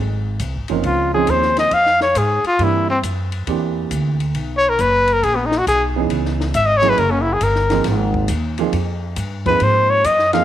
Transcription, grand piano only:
0.69 1.13 F3 medium
0.69 1.14 C4 medium
0.69 1.14 C#4 medium
0.69 1.15 D#4 medium
0.69 1.26 A#4 medium
1.15 1.69 F3 medium
1.15 1.70 C4 medium
1.15 1.70 C#4 medium
1.15 1.70 D#4 medium
1.15 1.70 G#4 medium
2.60 2.86 E3 medium
2.60 2.86 A#3 medium
2.60 2.86 C4 medium
2.60 2.86 D4 medium
2.60 2.86 G4 medium
3.47 4.14 E3 medium
3.47 4.15 A#3 medium
3.47 4.15 C4 medium
3.47 4.15 D4 medium
3.47 4.15 G4 medium
5.96 6.52 E3 medium
5.96 6.52 B3 medium
5.96 6.52 C#4 medium
5.96 6.52 D#4 medium
5.96 6.52 G#4 medium
6.82 6.96 F#3 medium
6.82 6.96 A#3 medium
6.82 6.96 C#4 medium
6.82 6.96 E4 medium
6.82 6.97 G#4 medium
7.71 8.27 F3 medium
7.71 8.27 A#3 medium
7.71 8.27 C4 medium
7.71 8.27 D#4 medium
7.71 8.27 G#4 medium
8.59 8.72 F3 medium
8.59 8.72 A#3 medium
8.59 8.72 C4 medium
8.59 8.73 D#4 medium
8.59 8.73 G#4 medium
9.46 10.02 F3 medium
9.46 10.02 A#3 medium
9.46 10.02 C4 medium
9.46 10.03 D#4 medium
9.46 10.03 G#4 medium
10.33 10.44 F3 medium
10.33 10.44 A#3 medium
10.33 10.44 C4 medium
10.33 10.44 D#4 medium
10.33 10.44 G#4 medium

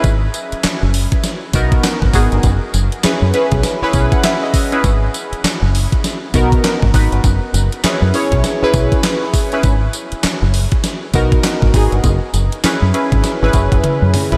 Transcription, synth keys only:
1.54 2.05 B3 loud
1.54 2.05 D#4 medium
1.54 2.05 F#4 medium
1.54 2.06 A#4 loud
2.14 2.44 B3 medium
2.14 2.44 D#4 medium
2.14 2.44 F#4 medium
2.14 2.44 G#4 medium
3.04 3.30 C#4 medium
3.04 3.30 E4 medium
3.04 3.30 G#4 medium
3.04 3.30 B4 medium
3.34 3.72 C#4 loud
3.34 3.72 E4 medium
3.34 3.72 G#4 medium
3.34 3.72 B4 loud
3.83 4.52 C#4 loud
3.83 4.52 E4 medium
3.83 4.53 G#4 medium
3.83 4.53 B4 loud
3.95 4.11 B5 medium
4.13 4.23 F#5 medium
4.25 4.41 E5 medium
4.43 4.81 D#5 medium
4.72 4.84 C#4 loud
4.72 4.84 E4 medium
4.72 4.84 G#4 medium
4.72 4.84 B4 loud
6.34 6.85 B3 loud
6.34 6.85 D#4 medium
6.34 6.85 F#4 medium
6.34 6.86 A#4 loud
6.94 7.24 B3 medium
6.94 7.24 D#4 medium
6.94 7.24 F#4 medium
6.94 7.25 B4 loud
7.84 8.09 C#4 medium
7.84 8.10 E4 medium
7.84 8.10 G#4 medium
7.84 8.10 B4 medium
8.14 8.52 C#4 medium
8.14 8.52 E4 medium
8.14 8.52 G#4 medium
8.14 8.52 C#5 loud
8.62 9.32 C#4 loud
8.62 9.32 E4 loud
8.62 9.32 G#4 medium
8.62 9.33 B4 loud
9.53 9.64 C#4 medium
9.53 9.64 E4 medium
9.53 9.65 G#4 medium
9.53 9.65 B4 loud
11.14 11.65 B3 loud
11.14 11.65 D#4 medium
11.14 11.65 F#4 medium
11.14 11.66 A#4 loud
11.75 12.04 B3 medium
11.75 12.05 D#4 medium
11.75 12.05 F#4 medium
11.75 12.05 G#4 loud
12.64 12.89 C#4 medium
12.64 12.90 E4 medium
12.64 12.90 G#4 medium
12.64 12.90 B4 loud
12.94 13.32 C#4 medium
12.94 13.32 E4 medium
12.94 13.32 G#4 medium
12.94 13.32 B4 loud
13.43 14.12 C#4 loud
13.43 14.12 E4 medium
13.43 14.13 G#4 medium
13.43 14.13 B4 loud
14.32 14.37 C#4 medium
14.32 14.37 E4 medium
14.32 14.37 G#4 medium
14.32 14.37 B4 loud

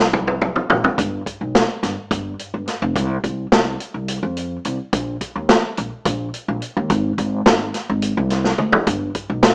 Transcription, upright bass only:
0.00 0.47 C2 medium
0.70 0.81 A#1 medium
0.98 1.20 G1 medium
1.41 1.63 B1 medium
1.83 1.94 G1 medium
2.11 2.33 G1 medium
2.54 2.65 G1 medium
2.82 2.93 F1 medium
2.96 3.17 C2 loud
3.24 3.46 C2 medium
3.52 3.74 C2 medium
3.94 4.16 C2 medium
4.23 4.55 F2 medium
4.65 4.76 C2 medium
4.93 5.15 A#1 medium
5.36 5.57 D#2 medium
5.78 5.89 A#1 medium
6.06 6.27 A#1 medium
6.48 6.59 A#1 medium
6.77 6.87 D#2 medium
6.90 7.12 G#1 loud
7.18 7.40 G#1 medium
7.47 7.69 G#1 medium
7.89 8.11 G#1 medium
8.17 8.50 C2 medium
8.59 8.70 D2 medium
8.87 9.09 G1 medium
9.30 9.51 B1 medium

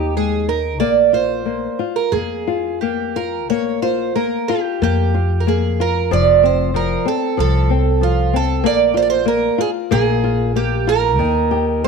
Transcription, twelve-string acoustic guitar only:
0.00 0.13 G4 loud
0.17 0.48 G#4 medium
0.49 0.79 A#4 medium
0.80 1.13 D5 medium
1.14 1.96 C5 medium
1.96 2.13 A#4 medium
2.12 2.81 G#4 medium
2.81 3.16 G4 medium
3.16 3.47 A#4 medium
3.50 3.80 C#5 medium
3.82 4.15 C5 medium
4.16 4.50 A#4 medium
4.48 4.82 G4 medium
4.83 5.43 G4 medium
5.40 5.47 A#4 medium
5.48 5.78 G#4 medium
5.81 6.10 A#4 medium
6.13 6.45 D5 loud
6.46 6.76 C5 medium
6.76 7.05 A#4 medium
7.08 7.39 A4 medium
7.40 8.05 A4 loud
8.03 8.35 F4 medium
8.36 8.66 A4 loud
8.66 8.97 D5 loud
8.97 9.02 C5 loud
9.02 9.09 D5 medium
9.10 9.27 C5 loud
9.28 9.61 A#4 medium
9.61 9.69 G#4 loud
9.92 10.56 G#4 loud
10.56 10.89 G4 medium
10.89 11.84 A#4 loud
11.84 11.88 D5 medium

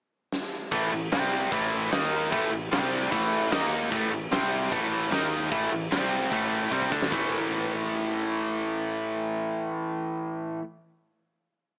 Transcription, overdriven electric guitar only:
0.72 0.91 A2 medium
0.72 0.91 E3 loud
0.72 0.92 A3 loud
0.92 1.08 A2 medium
0.92 1.08 E3 medium
1.12 1.51 C3 medium
1.12 1.52 G3 medium
1.12 1.52 C4 loud
1.52 1.91 A2 medium
1.52 1.91 E3 medium
1.52 1.92 A3 loud
1.91 2.31 D#3 medium
1.91 2.31 A#3 loud
1.91 2.31 D#4 loud
2.31 2.50 A2 loud
2.31 2.50 E3 medium
2.31 2.51 A3 loud
2.51 2.67 A2 medium
2.51 2.68 E3 medium
2.71 3.10 C3 medium
2.71 3.11 G3 loud
2.71 3.11 C4 loud
3.10 3.51 A2 medium
3.10 3.51 E3 loud
3.10 3.51 A3 loud
3.51 3.91 D#3 loud
3.51 3.91 A#3 medium
3.51 3.91 D#4 loud
3.91 4.10 A2 loud
3.91 4.11 E3 loud
3.91 4.11 A3 loud
4.12 4.28 A2 medium
4.12 4.28 E3 medium
4.32 4.71 C3 medium
4.32 4.71 G3 medium
4.32 4.72 C4 loud
4.72 5.11 A2 medium
4.72 5.11 E3 medium
4.72 5.12 A3 loud
5.11 5.50 D#3 loud
5.11 5.51 A#3 loud
5.11 5.51 D#4 loud
5.51 5.70 A2 medium
5.51 5.70 E3 loud
5.51 5.71 A3 loud
5.71 5.88 A2 medium
5.71 5.88 E3 medium
5.91 6.31 C3 medium
5.91 6.31 G3 loud
5.91 6.31 C4 loud
6.31 6.71 A2 medium
6.31 6.71 E3 medium
6.31 6.72 A3 loud
6.71 6.91 C3 medium
6.71 6.91 G3 loud
6.71 6.92 C4 medium
6.91 7.09 D3 medium
6.91 7.11 A3 loud
6.91 7.12 D4 medium
7.10 10.60 A2 medium
7.10 10.62 E3 loud
7.14 10.64 A3 loud

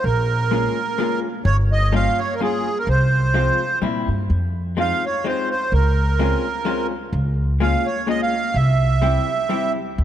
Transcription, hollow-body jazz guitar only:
0.51 0.77 G#3 medium
0.51 0.77 A#3 medium
0.51 0.77 C#4 medium
0.51 0.77 F4 medium
0.98 1.24 G#3 medium
0.98 1.24 A#3 medium
0.98 1.24 C#4 medium
0.98 1.24 F4 medium
1.92 2.18 G3 soft
1.92 2.18 A#3 medium
1.92 2.18 C#4 medium
1.92 2.18 F4 medium
2.40 2.65 G3 soft
2.40 2.66 A#3 soft
2.40 2.66 C#4 soft
2.40 2.66 F4 medium
3.34 3.60 F3 soft
3.34 3.59 G#3 soft
3.34 3.60 C4 soft
3.34 3.60 F4 medium
3.82 4.07 G3 medium
3.82 4.07 A#3 soft
3.82 4.08 C4 medium
3.82 4.08 E4 medium
4.77 5.03 G#3 soft
4.77 5.03 C4 soft
4.77 5.03 D#4 medium
4.77 5.03 F4 medium
5.24 5.50 G#3 soft
5.24 5.50 C4 medium
5.24 5.50 D#4 soft
5.24 5.50 F4 medium
6.19 6.44 G#3 medium
6.19 6.44 C4 medium
6.19 6.45 C#4 medium
6.19 6.45 F4 medium
6.65 6.91 G#3 medium
6.65 6.91 C4 medium
6.65 6.91 C#4 medium
6.65 6.91 F4 medium
7.60 7.85 G#3 medium
7.60 7.85 A#3 soft
7.60 7.86 C#4 soft
7.60 7.86 F4 medium
8.07 8.32 G#3 soft
8.07 8.33 A#3 medium
8.07 8.32 C#4 soft
8.07 8.33 F4 medium
9.02 9.27 G3 medium
9.02 9.28 C4 medium
9.02 9.28 E4 medium
9.02 9.28 G4 medium
9.49 9.75 G3 medium
9.49 9.75 C4 medium
9.49 9.76 E4 medium
9.49 9.76 G4 medium

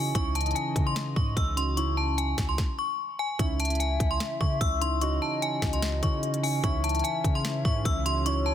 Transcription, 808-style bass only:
0.00 0.13 C#3 loud
0.15 0.54 C#2 loud
0.76 1.15 C#3 loud
1.16 1.36 G#2 loud
1.37 2.34 C#2 loud
2.38 2.57 C#2 loud
3.39 3.98 C#2 loud
4.00 4.20 C#2 loud
4.41 4.60 C#3 loud
4.61 5.19 C#2 loud
5.62 6.01 C#2 loud
6.03 6.61 C#3 loud
6.64 7.03 C#2 loud
7.24 7.63 C#3 loud
7.65 7.84 G#2 loud
7.85 8.54 C#2 loud

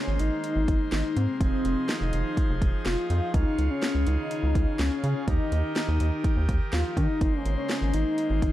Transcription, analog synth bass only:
0.08 0.18 G#1 loud
0.20 0.30 G#1 loud
0.56 0.66 G#1 loud
0.68 0.78 G#1 medium
0.92 1.03 G#1 loud
1.16 1.27 G#2 loud
1.41 1.51 F1 loud
1.65 1.75 F1 loud
2.01 2.11 F1 loud
2.13 2.24 F1 medium
2.49 2.60 F1 loud
2.62 2.72 F1 medium
2.86 2.96 F1 loud
3.10 3.20 F2 loud
3.34 3.44 C#2 loud
3.58 3.69 C#2 medium
3.95 4.05 C#2 medium
4.07 4.17 C#2 loud
4.43 4.53 C#2 loud
4.55 4.66 C#2 medium
4.79 4.90 C#2 loud
5.04 5.14 C#3 medium
5.28 5.38 D#2 loud
5.52 5.62 D#2 loud
5.88 5.99 D#2 loud
6.00 6.11 D#2 loud
6.37 6.47 D#2 medium
6.49 6.59 D#2 medium
6.73 6.83 D#2 loud
6.97 7.07 D#3 medium
7.21 7.32 G#1 loud
7.45 7.56 G#1 loud
7.82 7.92 G#1 loud
7.94 8.04 G#1 loud
8.30 8.40 G#1 loud
8.42 8.52 G#1 medium

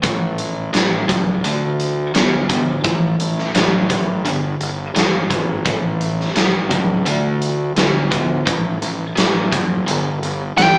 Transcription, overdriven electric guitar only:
0.02 0.66 A2 medium
0.02 0.66 E3 medium
0.73 1.05 A2 medium
0.73 1.05 F#3 medium
1.08 1.40 A2 medium
1.08 1.41 F#3 medium
1.44 2.07 D3 medium
1.44 2.08 A3 medium
2.14 2.46 D3 medium
2.14 2.46 B3 medium
2.49 2.81 D3 medium
2.49 2.81 B3 medium
2.84 3.48 A2 medium
2.84 3.48 E3 medium
3.55 3.87 A2 medium
3.55 3.87 F#3 medium
3.89 4.21 A2 medium
3.89 4.22 F#3 medium
4.25 4.88 G2 medium
4.25 4.89 D3 medium
4.94 5.27 G2 medium
4.94 5.27 E3 medium
5.30 5.62 G2 medium
5.30 5.62 E3 medium
5.65 6.29 A2 medium
5.65 6.29 E3 medium
6.35 6.68 A2 medium
6.35 6.68 F#3 loud
6.70 7.03 A2 medium
6.70 7.03 F#3 medium
7.06 7.69 D3 medium
7.06 7.70 A3 medium
7.76 8.08 D3 medium
7.76 8.08 B3 medium
8.10 8.43 D3 medium
8.10 8.43 B3 medium
8.45 9.09 A2 medium
8.45 9.09 E3 medium
9.16 9.48 A2 medium
9.16 9.48 F#3 medium
9.52 9.83 A2 medium
9.52 9.84 F#3 medium
9.86 10.50 G2 medium
9.86 10.50 D3 medium
10.57 10.78 G2 medium
10.57 10.78 E3 medium

